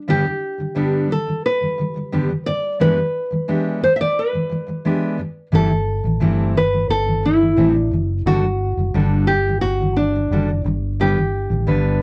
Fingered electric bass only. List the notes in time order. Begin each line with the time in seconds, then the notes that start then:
5.53 G1
6.04 A1
6.21 G1
6.89 G1
7.57 A1
7.92 F#1
8.26 G1
8.77 F#1
8.94 G1
9.63 G1
10.31 F#1
10.65 G1
11.50 A1
11.68 G1